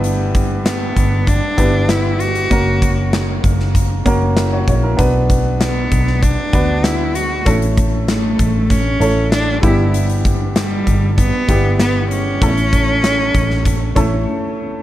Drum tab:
HH |x-x-x-x-x-x-x-xx|x-x-x-x-x-x-x-x-|x-x-x-x-x-x-x-x-|xxx-x-x-x-x-x-x-|
CP |----x-------x---|----x-------x---|----x-------x---|----x-------x---|
SD |----o-------o---|----o--o----o---|----o--o----o---|----o-------o---|
BD |--o---o-o-o-----|o-o---o-o-o---o-|o-o---o-o-o-----|o-o---o-o-----o-|

HH |xxx-x-x-x-x-x-x-|xxx-x-x-x-x-----|
CP |----x-------x---|----x-----------|
SD |----o-------o---|----o--o--------|
BD |--o---o-o-o-----|o-o---o-o-o-----|